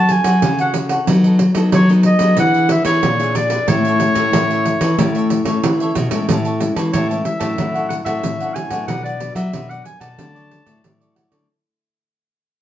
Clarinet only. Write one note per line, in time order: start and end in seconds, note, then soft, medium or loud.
0.00 0.13 A5 loud
0.11 0.60 G#5 loud
0.61 0.75 F#5 medium
1.75 1.89 C#5 medium
2.06 2.36 D#5 loud
2.39 2.69 F#5 loud
2.71 2.85 E5 medium
2.85 3.38 C#5 medium
3.36 3.70 D5 medium
3.69 5.64 C#5 loud
6.93 7.08 C#5 medium
7.26 7.87 E5 medium
7.89 7.97 F#5 medium
8.05 8.56 E5 medium
8.54 8.87 G#5 medium
8.87 9.03 F#5 medium
9.04 9.34 D5 medium
9.35 9.71 E5 medium
9.70 9.85 F#5 medium
9.85 10.00 G#5 medium
10.01 11.12 A5 medium